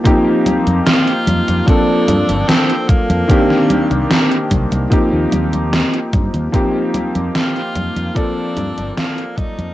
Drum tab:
HH |x-xxxxxxx-xxxxxx|x-xxxxxxx-xxxxxx|x-xxxxxxx-xxxxxx|
SD |----o-------o---|-o--o-------o---|----o-------o---|
CG |o-ooo-ooo-ooo-oo|o-ooo-ooo-ooo-oo|o-ooo-ooo-ooo-oo|
BD |o-------o-----o-|o-----o-o-----o-|o-------o-----o-|